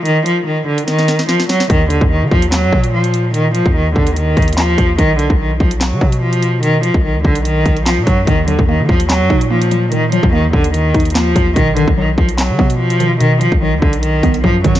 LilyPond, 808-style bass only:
\new Staff \with { instrumentName = "808-style bass" } { \clef bass \time 4/4 \key ees \minor \tempo 4 = 146 r1 | ees,8. ees,8 ees16 ees,8. ges,16 bes,4.~ | bes,8. ees,8. ees,4 ees,4 ees,8 | b,,8. b,,8. b,,8. dis16 b,4.~ |
b,8. b,,8 d,16 b,,4 b,,8. b,16 fis,8 | ees,8. ees,8 ees16 ees,8. ges,16 bes,4.~ | bes,8. ees,8. ees,4 ees,4 ees,8 | b,,8. b,,8. b,,8. dis16 b,4.~ |
b,8. b,,8 d,16 b,,4 b,,8 fis,8 fis,8 | }